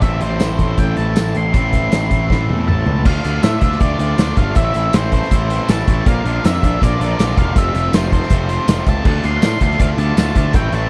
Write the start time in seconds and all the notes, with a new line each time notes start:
0.01 A1 A2 E3 A3 C4 E4 E5, kick, closed hi-hat
0.21 A1 C5, closed hi-hat
0.40 A1, snare, closed hi-hat, tambourine
0.58 A1, kick, closed hi-hat
0.78 A1 G5, kick, closed hi-hat
0.96 A1 A5, closed hi-hat
1.16 A1, snare, closed hi-hat, tambourine
1.34 A1 C6, closed hi-hat
1.53 A1 A2 E3 A3 C4 E4, kick, closed hi-hat
1.73 kick, closed hi-hat
1.92 A1, snare, closed hi-hat, tambourine
2.11 A1, kick, closed hi-hat
2.30 A1, kick, snare
2.49 E2, high tom
2.68 A1 A5, mid tom
2.86 C#2, floor tom
3.05 D2 D3 A3 D4 F4 F5, kick, crash
3.24 D2 D3 A3 D4 F4, closed hi-hat
3.43 A2 D3 A3 D4 F4 E5, snare, closed hi-hat, tambourine
3.61 D2 D3 A3 D4 F4, kick, closed hi-hat
3.72 snare
3.80 D2 D3 A3 D4 F4 D5, kick, closed hi-hat
3.99 D2 D3 A3 D4 F4, closed hi-hat
4.18 D2 D3 A3 D4 F4, snare, closed hi-hat, tambourine
4.29 snare
4.37 G1 D3 A3 D4 F4 F5, kick, closed hi-hat
4.55 A1 A2 E3 A3 C4 E4 E5, kick, closed hi-hat
4.74 A1 A2 E3 A3 C4 E4, closed hi-hat
4.93 A1 A2 E3 A3 C4 E4 C5, snare, closed hi-hat, tambourine
5.12 A2 E3 A3 C4 E4 C5, kick, closed hi-hat
5.23 snare
5.31 A1 A2 E3 A3 C4 E4, kick, closed hi-hat
5.49 A2 E3 A3 C4 E4, closed hi-hat
5.68 A1 A2 E3 A3 C4 E4 A5, snare, closed hi-hat, tambourine
5.80 snare
5.87 A1 A2 E3 A3 C4 E4, kick, closed hi-hat
6.06 A#1 A#2 D3 A#3 D4 F4 F5, kick, closed hi-hat
6.25 A#1 A#2 D3 A#3 D4 F4, closed hi-hat
6.44 F2 A#2 D3 A#3 D4 F4 E5, snare, closed hi-hat, tambourine
6.62 A#1 A#2 D3 A#3 D4 F4, kick, closed hi-hat
6.81 A#1 A#2 D3 A#3 D4 F4 D5, kick, closed hi-hat
6.99 A#1 A#2 D3 A#3 D4 F4, closed hi-hat
7.18 A#1 A#2 D3 A#3 D4 F4, snare, closed hi-hat, tambourine
7.30 snare
7.37 E1 A#2 D3 A#3 D4 F4 F5, kick, closed hi-hat
7.55 F1 F2 C3 F3 A3 C4 F4 E5, kick, closed hi-hat
7.73 F1 F2 C3 F3 A3 C4 F4, closed hi-hat
7.93 F1 F2 C3 F3 A3 C4 F4 C5, snare, closed hi-hat, tambourine
8.12 F2 C3 F3 A3 C4 F4 C5, kick, closed hi-hat
8.23 snare
8.30 F1 F2 C3 F3 A3 C4 F4, kick, closed hi-hat
8.49 F2 C3 F3 A3 C4 F4, closed hi-hat
8.67 F1 F2 C3 F3 A3 C4 F4, snare, closed hi-hat, tambourine
8.78 snare
8.86 C#2 F2 C3 F3 A3 C4 F4 A5, kick, closed hi-hat
9.05 D2 D3 A3 D4 F4 A5, kick, crash
9.23 D2 D3 A3 D4 F4 C6, closed hi-hat
9.42 A2 D3 A3 D4 F4, snare, closed hi-hat, tambourine
9.60 D2 D3 A3 D4 F4 C6, kick, closed hi-hat
9.71 snare
9.79 D2 D3 A3 D4 F4 F5, kick, closed hi-hat
9.98 D2 D3 A3 D4 F4 A5, closed hi-hat
10.17 D2 D3 A3 D4 F4, snare, closed hi-hat, tambourine
10.35 D2 D3 A3 D4 F4 A5, kick, closed hi-hat
10.53 A1 A2 E3 A3 C4 E4 G5, kick, closed hi-hat
10.72 A1 A2 E3 A3 C4 E4 A5, closed hi-hat